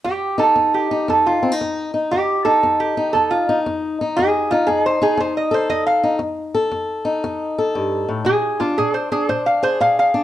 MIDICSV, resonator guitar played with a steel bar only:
0, 0, Header, 1, 2, 480
1, 0, Start_track
1, 0, Tempo, 512383
1, 52, Time_signature, 4, 2, 24, 8
1, 9589, End_track
2, 0, Start_track
2, 0, Title_t, "Resonator guitar played with a steel bar"
2, 0, Program_c, 0, 25
2, 42, Note_on_c, 0, 67, 78
2, 358, Note_off_c, 0, 67, 0
2, 366, Note_on_c, 0, 69, 66
2, 680, Note_off_c, 0, 69, 0
2, 695, Note_on_c, 0, 67, 61
2, 1005, Note_off_c, 0, 67, 0
2, 1026, Note_on_c, 0, 69, 72
2, 1176, Note_off_c, 0, 69, 0
2, 1184, Note_on_c, 0, 65, 71
2, 1435, Note_off_c, 0, 65, 0
2, 1980, Note_on_c, 0, 67, 78
2, 2289, Note_off_c, 0, 67, 0
2, 2293, Note_on_c, 0, 69, 73
2, 2606, Note_off_c, 0, 69, 0
2, 2622, Note_on_c, 0, 67, 69
2, 2927, Note_off_c, 0, 67, 0
2, 2931, Note_on_c, 0, 69, 79
2, 3089, Note_off_c, 0, 69, 0
2, 3097, Note_on_c, 0, 65, 79
2, 3353, Note_off_c, 0, 65, 0
2, 3902, Note_on_c, 0, 68, 84
2, 4211, Note_off_c, 0, 68, 0
2, 4223, Note_on_c, 0, 65, 73
2, 4372, Note_on_c, 0, 68, 81
2, 4376, Note_off_c, 0, 65, 0
2, 4530, Note_off_c, 0, 68, 0
2, 4552, Note_on_c, 0, 72, 72
2, 4701, Note_off_c, 0, 72, 0
2, 4708, Note_on_c, 0, 68, 82
2, 4859, Note_off_c, 0, 68, 0
2, 4876, Note_on_c, 0, 72, 73
2, 5022, Note_off_c, 0, 72, 0
2, 5031, Note_on_c, 0, 75, 60
2, 5180, Note_off_c, 0, 75, 0
2, 5192, Note_on_c, 0, 72, 83
2, 5337, Note_on_c, 0, 75, 81
2, 5340, Note_off_c, 0, 72, 0
2, 5491, Note_off_c, 0, 75, 0
2, 5495, Note_on_c, 0, 77, 70
2, 5752, Note_off_c, 0, 77, 0
2, 7738, Note_on_c, 0, 68, 86
2, 8047, Note_off_c, 0, 68, 0
2, 8054, Note_on_c, 0, 65, 68
2, 8210, Note_off_c, 0, 65, 0
2, 8223, Note_on_c, 0, 68, 74
2, 8375, Note_off_c, 0, 68, 0
2, 8376, Note_on_c, 0, 72, 66
2, 8531, Note_off_c, 0, 72, 0
2, 8542, Note_on_c, 0, 68, 70
2, 8694, Note_off_c, 0, 68, 0
2, 8704, Note_on_c, 0, 72, 77
2, 8855, Note_off_c, 0, 72, 0
2, 8864, Note_on_c, 0, 77, 67
2, 9015, Note_off_c, 0, 77, 0
2, 9025, Note_on_c, 0, 72, 84
2, 9175, Note_off_c, 0, 72, 0
2, 9191, Note_on_c, 0, 77, 84
2, 9338, Note_off_c, 0, 77, 0
2, 9359, Note_on_c, 0, 77, 74
2, 9589, Note_off_c, 0, 77, 0
2, 9589, End_track
0, 0, End_of_file